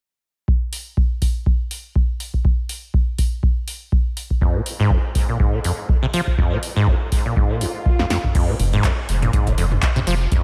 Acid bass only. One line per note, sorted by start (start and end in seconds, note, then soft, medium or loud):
4.41 4.57 F2 medium
4.55 4.61 A#2 medium
4.80 4.92 G#2 loud
4.91 4.98 F2 loud
5.29 5.38 A#2 medium
5.40 5.55 G#2 medium
5.53 5.59 A#2 medium
5.64 5.72 F2 medium
6.03 6.06 C3 loud
6.14 6.21 F3 loud
6.38 6.53 F2 medium
6.52 6.58 A#2 medium
6.76 6.89 G#2 loud
6.87 6.95 F2 loud
7.26 7.35 A#2 medium
7.37 7.52 G#2 medium
7.50 7.63 A#2 medium
7.61 7.66 D#2 medium
7.99 8.05 F2 medium
8.10 8.18 F2 medium
8.35 8.50 F2 medium
8.49 8.55 A#2 medium
8.73 8.86 G#2 loud
8.84 8.92 F2 loud
9.22 9.31 A#2 medium
9.33 9.48 G#2 medium
9.47 9.53 A#2 medium
9.58 9.65 F2 medium
9.96 10.00 C3 loud
10.07 10.15 F3 loud
10.32 10.43 F2 medium